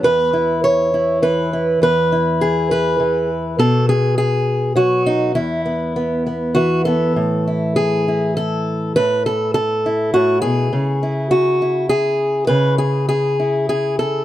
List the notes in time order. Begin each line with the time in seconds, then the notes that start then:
Already playing: B3
0.03 E2 B4
0.33 E4
0.64 C#5
0.94 E4
1.22 E3 B4
1.53 E4
1.82 E2 B4
2.12 E4
2.41 G#4
2.71 B4
3.00 E3
3.59 B2 A4
3.89 G#4
4.18 G#4
4.76 F#3 F#4
5.06 D#4
5.35 E2 E4
5.66 B3
5.96 B3
6.27 B3
6.55 E3 F#4
6.85 B3 A4
7.16 A2
7.48 E4
7.76 G#4
8.08 E4
8.37 A4
8.96 A2 B4
9.26 A4
9.54 A4
9.86 E4
10.14 A2 F#4
10.42 B2 G#4
10.73 C#3
11.03 E4
11.31 F#4
11.62 E4
11.89 G#4
12.47 C#3 B4
12.78 G#4
13.09 G#4
13.40 E4
13.69 G#4
13.99 A4